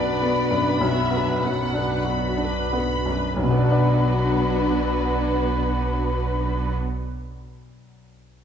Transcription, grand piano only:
0.00 0.78 B1 soft
0.00 0.51 F#2 soft
0.00 0.22 B3 soft
0.00 1.73 D4 soft
0.00 0.10 F#4 soft
0.22 0.70 B3 soft
0.51 1.00 F#2 soft
0.81 3.35 B1 soft
1.11 1.62 B3 soft
1.42 1.93 F#2 soft
1.73 2.26 D4 soft
2.04 2.59 F#4 soft
2.37 2.93 D4 soft
2.73 3.26 B3 soft
3.06 3.39 F#2 soft
3.36 6.71 B1 soft
3.43 6.78 B2 soft
3.50 6.85 B3 soft
3.58 6.92 D4 soft
3.64 6.99 F#4 soft
3.72 7.07 D5 soft

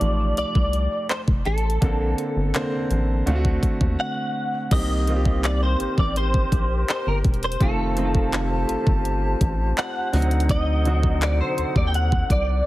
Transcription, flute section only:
4.72 7.58 C4 medium
4.72 7.58 G4 medium
4.72 7.58 A#4 medium
4.72 7.58 C5 medium
7.60 10.11 F4 medium
7.60 10.11 G4 medium
7.60 12.66 C5 medium
7.60 10.11 A5 medium
10.13 12.66 D#4 medium
10.13 12.66 A4 medium
10.13 12.66 F#5 medium

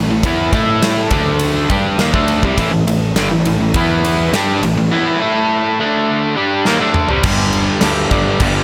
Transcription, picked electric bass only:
0.08 0.22 A1 medium
0.23 0.51 E2 medium
0.53 1.07 A2 loud
1.11 1.66 D2 medium
1.70 1.97 G2 medium
1.98 2.12 D#2 loud
2.13 2.41 D2 medium
2.43 2.57 C2 medium
2.57 2.70 A1 medium
2.71 2.85 A1 medium
2.86 3.13 A1 medium
3.15 3.29 G1 loud
3.30 3.44 A1 medium
3.44 3.58 A1 medium
3.58 3.73 A1 medium
3.74 4.29 E2 loud
4.32 4.59 G2 medium
4.61 4.75 A1 medium
4.76 4.90 A1 medium
7.24 7.67 G1 medium
7.82 8.04 D2 loud
8.11 8.33 G1 medium
8.40 8.62 G1 loud

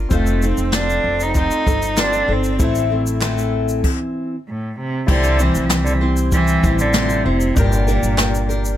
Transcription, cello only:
0.13 0.46 A3 medium
0.44 0.76 C4 medium
0.74 1.24 D4 loud
1.22 1.36 D#4 medium
1.37 2.01 D#4 loud
2.00 2.33 D4 loud
2.32 2.92 C4 medium
4.48 4.76 A2 medium
4.79 5.07 C3 medium
5.10 5.43 D3 loud
5.42 5.68 E3 loud
5.66 5.77 F3 medium
5.75 5.86 E3 medium
5.84 5.95 D3 loud
5.94 6.02 E3 medium
6.34 6.83 E3 loud
6.81 7.27 D3 loud
7.26 7.59 C3 loud
7.58 8.77 A#2 loud

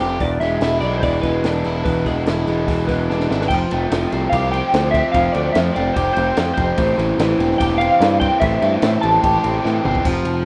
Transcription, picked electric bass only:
0.00 0.19 F1 medium
0.21 0.40 E1 medium
0.41 0.60 E1 medium
0.61 0.80 E1 medium
0.82 1.01 B1 medium
1.04 1.22 E1 medium
1.23 1.42 E1 medium
1.44 1.63 E1 medium
1.66 1.84 E1 medium
1.86 2.04 E1 medium
2.07 2.25 E1 medium
2.28 2.46 E1 medium
2.48 2.66 E1 medium
2.68 2.87 E1 medium
2.89 3.08 E1 medium
3.10 3.29 E1 medium
3.30 3.49 G#1 medium
3.51 3.65 F1 medium
3.72 3.86 F1 medium
3.92 4.06 F1 medium
4.13 4.26 C2 medium
4.33 4.61 C2 medium
4.74 5.02 D2 medium
5.15 5.29 F1 medium
5.35 5.49 D2 medium
5.56 5.70 F2 medium
5.77 5.90 F1 medium
5.97 6.11 F1 medium
6.17 6.31 F1 medium
6.38 6.52 F2 medium
6.58 6.72 F1 medium
6.79 6.93 A1 medium
6.98 7.12 A1 medium
7.18 7.33 A1 medium
7.39 7.53 E1 medium
7.61 7.88 E1 medium
8.00 8.29 G2 medium
8.42 8.56 A1 loud
8.62 8.76 G2 medium
8.82 8.97 A2 medium
9.04 9.18 A1 medium
9.24 9.38 A1 medium
9.45 9.58 A1 medium
9.65 9.79 A2 medium
9.85 9.99 G1 medium
10.05 10.24 F1 medium
10.25 10.44 F1 medium

